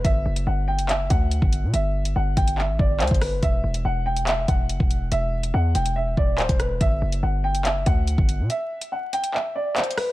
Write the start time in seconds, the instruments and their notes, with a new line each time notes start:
0.04 808-style bass G1, grand piano E5, kick, closed hi-hat
0.26 808-style bass F#1
0.36 closed hi-hat
0.47 808-style bass G1, grand piano F#5
0.68 grand piano G5
0.79 808-style bass F#1, closed hi-hat
0.89 grand piano E5, clap, closed hi-hat
1.10 808-style bass D2, grand piano F#5, kick, closed hi-hat
1.31 closed hi-hat
1.42 808-style bass G1, kick
1.53 closed hi-hat
1.63 808-style bass B2
1.73 808-style bass G1, grand piano E5, closed hi-hat
2.05 closed hi-hat
2.16 808-style bass G1, grand piano F#5
2.37 808-style bass G1, grand piano G5, kick, closed hi-hat
2.48 closed hi-hat
2.58 grand piano E5, clap
2.69 808-style bass A1
2.79 808-style bass G1, grand piano D5, kick
3.00 808-style bass D2, grand piano C5, clap, closed hi-hat
3.07 808-style bass G1, kick, closed hi-hat
3.14 closed hi-hat
3.21 grand piano B4, cross-stick, open hi-hat
3.32 808-style bass F#1
3.42 808-style bass E1, grand piano E5, kick, closed hi-hat
3.64 808-style bass E1
3.74 closed hi-hat
3.85 808-style bass E1, grand piano F#5
4.06 grand piano G5
4.17 closed hi-hat
4.27 grand piano E5, clap, closed hi-hat
4.48 808-style bass E1, grand piano F#5, kick, closed hi-hat
4.69 808-style bass F#1, closed hi-hat
4.80 808-style bass E1, kick
4.91 closed hi-hat
5.12 808-style bass E1, grand piano E5, closed hi-hat
5.43 closed hi-hat
5.54 808-style bass E2, grand piano F#5
5.75 808-style bass E1, grand piano G5, closed hi-hat
5.86 closed hi-hat
5.96 grand piano E5
6.17 808-style bass E1, grand piano D5, kick
6.38 808-style bass D1, grand piano C5, clap, closed hi-hat
6.49 808-style bass E1, kick, closed hi-hat
6.59 grand piano B4, cross-stick, closed hi-hat
6.81 808-style bass G1, grand piano E5, kick, closed hi-hat
7.02 808-style bass F#1
7.12 closed hi-hat
7.23 808-style bass G1, grand piano F#5
7.44 grand piano G5
7.55 808-style bass F#1, closed hi-hat
7.65 grand piano E5, clap, closed hi-hat
7.86 808-style bass D2, grand piano F#5, kick, closed hi-hat
8.07 closed hi-hat
8.18 808-style bass G1, kick
8.29 closed hi-hat
8.39 808-style bass B2
8.50 grand piano E5, closed hi-hat
8.81 closed hi-hat
8.92 grand piano F#5
9.13 grand piano G5, closed hi-hat
9.24 closed hi-hat
9.34 grand piano E5, clap
9.55 grand piano D5
9.76 grand piano C5, clap, closed hi-hat
9.84 closed hi-hat
9.91 closed hi-hat
9.97 grand piano B4, cross-stick, open hi-hat